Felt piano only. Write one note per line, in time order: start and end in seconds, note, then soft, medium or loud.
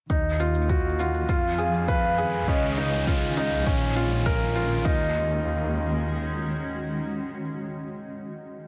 0.10 0.38 D#4 medium
0.40 0.57 F4 medium
0.69 0.86 F#4 medium
0.99 1.27 F4 medium
1.29 1.57 F4 medium
1.58 1.87 G#4 medium
1.88 2.05 B4 medium
2.18 2.46 G#4 medium
2.48 2.76 C#4 medium
2.78 2.94 D#4 medium
3.07 3.24 F4 medium
3.37 3.54 D#4 medium
3.66 3.95 C#4 medium
3.96 4.24 F4 medium
4.26 4.43 A#4 medium
4.56 4.84 F4 medium
4.85 5.13 D#4 medium